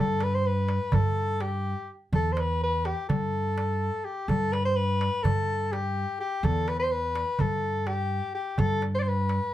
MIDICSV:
0, 0, Header, 1, 4, 480
1, 0, Start_track
1, 0, Tempo, 478088
1, 2138, Time_signature, 9, 3, 24, 8
1, 9577, End_track
2, 0, Start_track
2, 0, Title_t, "Soprano saxophone"
2, 0, Program_c, 0, 64
2, 0, Note_on_c, 0, 69, 86
2, 232, Note_on_c, 0, 71, 80
2, 247, Note_off_c, 0, 69, 0
2, 347, Note_on_c, 0, 72, 83
2, 362, Note_off_c, 0, 71, 0
2, 464, Note_on_c, 0, 71, 83
2, 480, Note_off_c, 0, 72, 0
2, 945, Note_on_c, 0, 69, 79
2, 960, Note_off_c, 0, 71, 0
2, 1421, Note_on_c, 0, 67, 75
2, 1436, Note_off_c, 0, 69, 0
2, 1899, Note_off_c, 0, 67, 0
2, 2155, Note_on_c, 0, 69, 82
2, 2329, Note_on_c, 0, 72, 65
2, 2344, Note_off_c, 0, 69, 0
2, 2407, Note_on_c, 0, 71, 82
2, 2422, Note_off_c, 0, 72, 0
2, 2632, Note_off_c, 0, 71, 0
2, 2646, Note_on_c, 0, 71, 87
2, 2868, Note_on_c, 0, 67, 76
2, 2883, Note_off_c, 0, 71, 0
2, 3095, Note_off_c, 0, 67, 0
2, 3101, Note_on_c, 0, 69, 71
2, 4066, Note_on_c, 0, 67, 78
2, 4082, Note_off_c, 0, 69, 0
2, 4305, Note_on_c, 0, 69, 93
2, 4320, Note_off_c, 0, 67, 0
2, 4541, Note_on_c, 0, 71, 86
2, 4556, Note_off_c, 0, 69, 0
2, 4659, Note_off_c, 0, 71, 0
2, 4669, Note_on_c, 0, 72, 85
2, 4778, Note_on_c, 0, 71, 93
2, 4793, Note_off_c, 0, 72, 0
2, 5253, Note_on_c, 0, 69, 81
2, 5268, Note_off_c, 0, 71, 0
2, 5746, Note_on_c, 0, 67, 84
2, 5761, Note_off_c, 0, 69, 0
2, 6221, Note_off_c, 0, 67, 0
2, 6227, Note_on_c, 0, 67, 83
2, 6473, Note_on_c, 0, 69, 87
2, 6488, Note_off_c, 0, 67, 0
2, 6709, Note_on_c, 0, 71, 85
2, 6724, Note_off_c, 0, 69, 0
2, 6815, Note_off_c, 0, 71, 0
2, 6821, Note_on_c, 0, 72, 85
2, 6945, Note_on_c, 0, 71, 92
2, 6960, Note_off_c, 0, 72, 0
2, 7435, Note_on_c, 0, 69, 78
2, 7450, Note_off_c, 0, 71, 0
2, 7902, Note_on_c, 0, 67, 85
2, 7917, Note_off_c, 0, 69, 0
2, 8374, Note_off_c, 0, 67, 0
2, 8380, Note_on_c, 0, 67, 82
2, 8628, Note_on_c, 0, 69, 92
2, 8643, Note_off_c, 0, 67, 0
2, 8862, Note_off_c, 0, 69, 0
2, 8981, Note_on_c, 0, 72, 87
2, 9028, Note_on_c, 0, 74, 74
2, 9043, Note_off_c, 0, 72, 0
2, 9064, Note_on_c, 0, 72, 82
2, 9079, Note_off_c, 0, 74, 0
2, 9118, Note_on_c, 0, 71, 83
2, 9133, Note_off_c, 0, 72, 0
2, 9577, Note_off_c, 0, 71, 0
2, 9577, End_track
3, 0, Start_track
3, 0, Title_t, "Upright bass"
3, 0, Program_c, 1, 32
3, 0, Note_on_c, 1, 43, 95
3, 775, Note_off_c, 1, 43, 0
3, 933, Note_on_c, 1, 43, 89
3, 1733, Note_off_c, 1, 43, 0
3, 2133, Note_on_c, 1, 40, 96
3, 2933, Note_off_c, 1, 40, 0
3, 3106, Note_on_c, 1, 43, 81
3, 3900, Note_off_c, 1, 43, 0
3, 4298, Note_on_c, 1, 43, 95
3, 5096, Note_off_c, 1, 43, 0
3, 5263, Note_on_c, 1, 43, 78
3, 6058, Note_off_c, 1, 43, 0
3, 6457, Note_on_c, 1, 40, 101
3, 7255, Note_off_c, 1, 40, 0
3, 7429, Note_on_c, 1, 43, 92
3, 8222, Note_off_c, 1, 43, 0
3, 8619, Note_on_c, 1, 43, 103
3, 9416, Note_off_c, 1, 43, 0
3, 9577, End_track
4, 0, Start_track
4, 0, Title_t, "Darbuka"
4, 205, Note_on_c, 9, 63, 66
4, 306, Note_off_c, 9, 63, 0
4, 687, Note_on_c, 9, 63, 67
4, 788, Note_off_c, 9, 63, 0
4, 923, Note_on_c, 9, 64, 91
4, 1023, Note_off_c, 9, 64, 0
4, 1410, Note_on_c, 9, 63, 62
4, 1510, Note_off_c, 9, 63, 0
4, 2135, Note_on_c, 9, 64, 79
4, 2236, Note_off_c, 9, 64, 0
4, 2378, Note_on_c, 9, 63, 72
4, 2478, Note_off_c, 9, 63, 0
4, 2862, Note_on_c, 9, 63, 64
4, 2963, Note_off_c, 9, 63, 0
4, 3108, Note_on_c, 9, 64, 83
4, 3209, Note_off_c, 9, 64, 0
4, 3348, Note_on_c, 9, 62, 23
4, 3449, Note_off_c, 9, 62, 0
4, 3590, Note_on_c, 9, 63, 63
4, 3690, Note_off_c, 9, 63, 0
4, 4311, Note_on_c, 9, 64, 74
4, 4411, Note_off_c, 9, 64, 0
4, 4552, Note_on_c, 9, 63, 65
4, 4652, Note_off_c, 9, 63, 0
4, 5030, Note_on_c, 9, 63, 67
4, 5130, Note_off_c, 9, 63, 0
4, 5270, Note_on_c, 9, 64, 84
4, 5370, Note_off_c, 9, 64, 0
4, 5506, Note_on_c, 9, 62, 23
4, 5607, Note_off_c, 9, 62, 0
4, 5753, Note_on_c, 9, 63, 62
4, 5853, Note_off_c, 9, 63, 0
4, 6470, Note_on_c, 9, 64, 83
4, 6571, Note_off_c, 9, 64, 0
4, 6704, Note_on_c, 9, 63, 64
4, 6804, Note_off_c, 9, 63, 0
4, 7183, Note_on_c, 9, 63, 70
4, 7283, Note_off_c, 9, 63, 0
4, 7417, Note_on_c, 9, 64, 83
4, 7517, Note_off_c, 9, 64, 0
4, 7663, Note_on_c, 9, 62, 24
4, 7764, Note_off_c, 9, 62, 0
4, 7898, Note_on_c, 9, 63, 64
4, 7998, Note_off_c, 9, 63, 0
4, 8613, Note_on_c, 9, 64, 86
4, 8713, Note_off_c, 9, 64, 0
4, 8856, Note_on_c, 9, 63, 55
4, 8957, Note_off_c, 9, 63, 0
4, 9330, Note_on_c, 9, 63, 61
4, 9431, Note_off_c, 9, 63, 0
4, 9577, End_track
0, 0, End_of_file